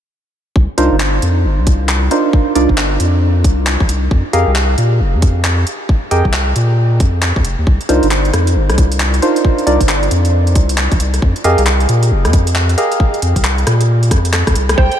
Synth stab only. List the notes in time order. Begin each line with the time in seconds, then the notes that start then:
0.78 D4 D#4 F4 A#4 C5
2.11 D4 D#4 F4 A#4 C5
2.55 D4 D#4 F4 A#4 D5
4.33 G4 G#4 A#4 D#5 F5
6.11 G4 G#4 A#4 D#5 G5
7.89 D4 D#4 F4 A#4 C5
9.22 D4 D#4 F4 A#4 C5
9.67 D4 D#4 F4 A#4 D5
11.44 G4 G#4 A#4 D#5 F5
12.78 G4 G#4 A#4 D#5 F5